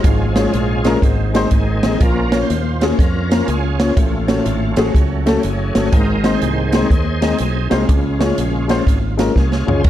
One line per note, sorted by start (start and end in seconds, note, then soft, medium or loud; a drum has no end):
0.03 0.46 G#1 loud
0.03 0.82 G#2 medium
0.03 0.98 F3 medium
0.03 0.98 G#3 soft
0.03 0.99 C#4 medium
0.03 0.99 F4 medium
0.03 0.98 G#4 medium
0.03 kick loud
0.03 closed hi-hat medium
0.36 0.48 G#3 medium
0.36 0.48 C#4 medium
0.36 0.48 F4 medium
0.36 0.49 C#5 medium
0.36 snare loud
0.36 closed hi-hat medium
0.53 0.95 A#1 medium
0.53 closed hi-hat medium
0.84 0.97 G#3 medium
0.84 0.97 C#4 medium
0.84 0.97 F4 medium
0.84 0.98 A#4 medium
0.84 snare medium
0.84 closed hi-hat medium
1.02 1.44 G#1 medium
1.02 1.80 G#2 medium
1.02 1.97 D#3 medium
1.02 1.97 G#3 medium
1.02 1.52 C4 medium
1.02 kick medium
1.02 closed hi-hat medium
1.34 1.46 G#3 medium
1.34 1.46 C4 medium
1.34 1.47 D#4 medium
1.34 1.47 C5 medium
1.34 snare medium
1.34 closed hi-hat medium
1.51 1.79 G#1 medium
1.51 1.98 C4 medium
1.51 1.98 D#4 medium
1.51 2.03 G#4 medium
1.51 kick medium
1.51 closed hi-hat medium
1.83 1.99 A1 medium
1.83 1.95 G#3 medium
1.83 1.95 C4 medium
1.83 1.96 D#4 medium
1.83 1.96 D#5 medium
1.83 snare loud
1.83 closed hi-hat medium
2.00 2.42 A#1 medium
2.00 2.78 A#2 medium
2.00 2.37 F3 soft
2.00 2.38 A#3 soft
2.00 2.38 C#4 medium
2.00 2.40 F4 medium
2.00 2.39 A#4 medium
2.00 kick loud
2.00 closed hi-hat medium
2.32 2.44 A#3 medium
2.32 2.44 C#4 medium
2.32 2.45 F4 medium
2.32 2.45 C#5 medium
2.32 snare loud
2.32 closed hi-hat medium
2.41 2.99 F4 medium
2.41 2.83 C5 loud
2.50 2.92 D#2 medium
2.50 closed hi-hat medium
2.81 2.93 A#3 medium
2.81 2.93 C#4 medium
2.81 2.94 F4 medium
2.81 2.94 G#4 medium
2.81 3.00 C#5 medium
2.81 snare medium
2.81 closed hi-hat medium
2.99 3.41 F2 medium
2.99 3.47 C#4 medium
2.99 3.47 F4 medium
2.99 3.50 A#4 loud
2.99 kick medium
2.99 closed hi-hat medium
3.30 3.42 A#3 medium
3.30 3.42 C#4 medium
3.30 3.43 F4 medium
3.30 3.43 A#4 medium
3.30 snare medium
3.30 closed hi-hat medium
3.48 3.90 C#2 medium
3.48 3.94 C#4 medium
3.48 3.94 F4 medium
3.48 3.94 G#4 medium
3.48 closed hi-hat medium
3.79 3.91 A#3 medium
3.79 3.91 C#4 medium
3.79 3.92 F4 medium
3.79 3.92 C#5 medium
3.79 snare loud
3.79 closed hi-hat medium
3.97 4.39 A1 medium
3.97 4.74 A2 medium
3.97 4.76 A3 medium
3.97 4.77 C#4 soft
3.97 4.91 F4 medium
3.97 kick loud
3.97 closed hi-hat medium
4.27 4.40 A3 medium
4.27 4.40 C#4 medium
4.27 4.40 F#4 medium
4.27 4.41 C#5 medium
4.27 snare loud
4.27 closed hi-hat medium
4.46 4.73 G#1 medium
4.46 closed hi-hat medium
4.76 4.92 A1 medium
4.76 5.89 F#3 soft
4.76 4.89 A3 medium
4.76 5.89 A3 soft
4.76 4.89 C#4 medium
4.76 5.43 C#4 medium
4.76 4.90 F#4 medium
4.76 4.90 G#4 medium
4.76 snare loud
4.76 closed hi-hat medium
4.94 5.36 C#2 medium
4.94 kick medium
4.94 closed hi-hat medium
5.26 5.38 A3 medium
5.26 5.38 C#4 medium
5.26 5.39 F#4 medium
5.26 5.39 A4 medium
5.26 snare medium
5.26 closed hi-hat medium
5.39 5.44 G4 medium
5.43 5.71 F#1 medium
5.43 5.90 C#4 medium
5.43 5.95 G#4 medium
5.43 closed hi-hat medium
5.75 5.90 G1 medium
5.75 5.87 A3 medium
5.75 5.87 C#4 medium
5.75 5.87 F#4 medium
5.75 5.88 C#5 medium
5.75 snare loud
5.75 closed hi-hat medium
5.92 6.35 G#1 medium
5.92 6.69 G#2 medium
5.92 6.73 D#3 soft
5.92 6.73 G#3 soft
5.92 6.73 C4 medium
5.92 6.33 D#4 medium
5.92 6.35 A#4 medium
5.92 kick loud
5.92 closed hi-hat loud
6.23 6.36 G#3 medium
6.23 6.36 C4 medium
6.23 6.36 D#4 medium
6.23 6.37 C5 medium
6.23 snare loud
6.23 closed hi-hat medium
6.34 6.91 D#4 medium
6.34 6.91 G#4 medium
6.34 6.75 C5 medium
6.42 6.83 C2 medium
6.42 closed hi-hat medium
6.72 6.89 D#3 soft
6.72 6.85 G#3 medium
6.72 6.90 G#3 soft
6.72 6.85 C4 medium
6.72 6.90 C4 soft
6.72 6.86 D#4 medium
6.72 6.86 C5 medium
6.72 6.90 C#5 medium
6.72 snare loud
6.72 closed hi-hat medium
6.90 7.32 D#2 medium
6.90 7.22 D#4 medium
6.90 7.21 G#4 medium
6.90 7.24 C5 loud
6.90 kick medium
6.90 closed hi-hat medium
7.21 7.34 G#3 medium
7.21 7.34 C4 medium
7.21 7.85 C4 medium
7.21 7.34 D#4 medium
7.21 7.85 D#4 medium
7.21 7.68 G#4 loud
7.21 7.35 D#5 medium
7.21 snare medium
7.21 closed hi-hat medium
7.38 7.67 B1 medium
7.38 closed hi-hat medium
7.70 7.87 C2 medium
7.70 7.82 G#3 medium
7.70 8.69 G#3 soft
7.70 7.83 C4 medium
7.70 8.70 C#4 soft
7.70 7.83 D#4 medium
7.70 9.15 F4 medium
7.70 7.83 C5 medium
7.70 snare loud
7.70 closed hi-hat medium
7.88 8.31 C#2 loud
7.88 8.66 C#3 medium
7.88 kick loud
7.88 closed hi-hat medium
8.19 8.32 G#3 medium
8.19 8.32 C#4 medium
8.19 8.33 F4 medium
8.19 8.33 C#5 medium
8.19 snare loud
8.19 closed hi-hat medium
8.38 8.80 A#1 medium
8.38 closed hi-hat medium
8.68 8.98 F3 soft
8.68 8.80 G#3 medium
8.68 8.99 G#3 soft
8.68 8.81 C#4 medium
8.68 8.99 C#4 medium
8.68 8.81 F4 medium
8.68 8.82 C5 medium
8.68 snare medium
8.68 closed hi-hat medium
8.87 9.28 G#1 medium
8.87 kick medium
8.87 closed hi-hat medium
9.17 9.30 G#3 medium
9.17 9.30 C#4 medium
9.17 9.30 F4 medium
9.17 9.31 A#4 medium
9.17 snare medium
9.17 closed hi-hat medium
9.36 9.63 C2 medium
9.36 9.82 C#4 medium
9.36 9.82 F4 medium
9.36 9.82 G#4 medium
9.36 kick medium
9.36 snare soft
9.52 snare medium
9.67 9.83 C#2 medium
9.67 9.79 G#3 medium
9.67 9.79 C#4 medium
9.67 9.80 F4 medium
9.67 9.80 C#5 medium
9.67 floor tom medium
9.80 9.85 C5 medium
9.84 9.90 F#1 medium
9.84 9.90 C#4 medium
9.84 9.90 F#4 medium
9.84 9.90 A#4 medium
9.84 kick loud
9.84 crash medium